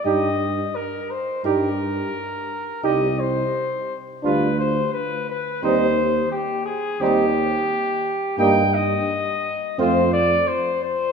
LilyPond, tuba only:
\new Staff \with { instrumentName = "Tuba" } { \clef bass \time 4/4 \key c \minor \tempo 4 = 86 g,4 r4 g,4 r4 | c,4 r4 d,4 r4 | ees,4 r4 ees,4 r4 | \key ees \lydian g,4 r4 f,4 r4 | }